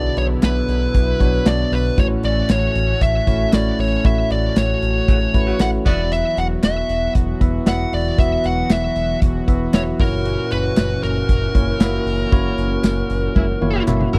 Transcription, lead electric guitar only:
0.00 0.16 D5 medium
0.18 0.25 C#5 medium
0.44 1.50 B4 medium
1.47 1.73 D5 loud
1.73 1.99 B4 medium
1.99 2.06 C#5 loud
2.25 2.51 D5 medium
2.51 3.02 C#5 medium
3.03 3.50 E5 loud
3.54 3.78 D5 loud
3.80 4.05 C#5 loud
4.06 4.31 E5 loud
4.32 4.57 D5 loud
4.58 5.64 C#5 medium
5.61 5.68 F#5 loud
5.87 6.12 D5 loud
6.13 6.39 E5 loud
6.38 6.45 F#5 loud
6.64 7.12 E5 medium
7.68 7.92 F#5 loud
7.94 8.19 D5 medium
8.20 8.46 E5 loud
8.46 8.72 F#5 loud
8.71 9.19 E5 medium
9.74 9.81 C#5 loud
10.00 10.51 A#4 loud
10.52 11.03 B4 loud
11.03 13.84 A#4 medium

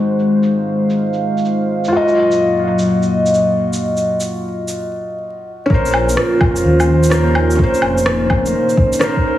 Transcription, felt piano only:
0.00 1.89 G#3 medium
0.00 1.91 F#4 medium
0.00 1.93 C5 medium
1.88 5.66 F4 medium
1.93 5.68 F#4 medium
1.93 5.70 D#5 medium
5.66 7.08 C#4 medium
5.70 7.10 A#4 medium
5.74 7.12 C5 medium
7.10 7.54 C#4 medium
7.10 7.57 A#4 medium
7.10 7.58 C5 medium
7.55 8.97 C#4 medium
7.59 8.99 A#4 medium
7.63 9.01 C5 medium
8.99 9.38 C#4 medium
8.99 9.38 A#4 medium
8.99 9.38 C5 loud

